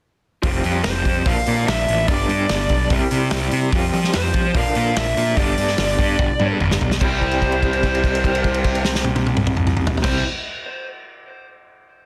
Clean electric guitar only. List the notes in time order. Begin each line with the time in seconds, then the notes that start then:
0.42 F3 G3 C4 F4
1.25 A#2 D3 F3 A#3 D4
2.08 G2 D3 G3 B3 D4
2.90 C3 G3 C4 E4
3.72 F3 G3 C4 F4
4.54 A#2 D3 F3 A#3 D4
5.36 G2 D3 G3 B3 D4
7.01 C3 G3 C4
7.05 E4
10.02 C3 G3 C4 E4